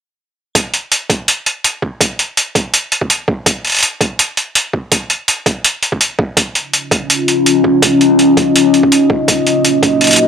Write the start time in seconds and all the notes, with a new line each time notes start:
0.55 kick, closed hi-hat
0.74 closed hi-hat
0.92 closed hi-hat
1.10 kick, closed hi-hat
1.28 closed hi-hat
1.46 closed hi-hat
1.64 closed hi-hat
1.82 kick
2.01 kick, closed hi-hat
2.19 closed hi-hat
2.37 closed hi-hat
2.55 kick, closed hi-hat
2.74 closed hi-hat
2.92 closed hi-hat
3.01 kick
3.10 closed hi-hat
3.28 kick
3.46 kick, closed hi-hat
3.65 closed hi-hat
3.67 closed hi-hat
3.70 closed hi-hat
3.72 closed hi-hat
3.75 closed hi-hat
3.77 closed hi-hat
3.79 closed hi-hat
3.80 closed hi-hat
3.83 closed hi-hat
4.01 kick, closed hi-hat
4.19 closed hi-hat
4.37 closed hi-hat
4.55 closed hi-hat
4.73 kick
4.92 kick, closed hi-hat
5.10 closed hi-hat
5.28 closed hi-hat
5.46 kick, closed hi-hat
5.64 closed hi-hat
5.83 closed hi-hat
5.92 kick
6.01 closed hi-hat
6.19 kick
6.37 C#4 F4 D#5, kick, closed hi-hat
6.55 closed hi-hat
6.74 closed hi-hat
6.91 kick, closed hi-hat
7.10 closed hi-hat
7.28 closed hi-hat
7.46 closed hi-hat
7.64 kick
7.82 kick, closed hi-hat
8.01 closed hi-hat
8.19 closed hi-hat
8.37 kick, closed hi-hat
8.56 closed hi-hat
8.74 closed hi-hat
8.83 kick
8.92 closed hi-hat
9.10 kick
9.28 A#3 F#4, kick, closed hi-hat
9.46 closed hi-hat
9.64 closed hi-hat
9.83 kick, closed hi-hat
10.01 closed hi-hat
10.04 closed hi-hat
10.07 closed hi-hat
10.11 closed hi-hat
10.13 closed hi-hat
10.16 closed hi-hat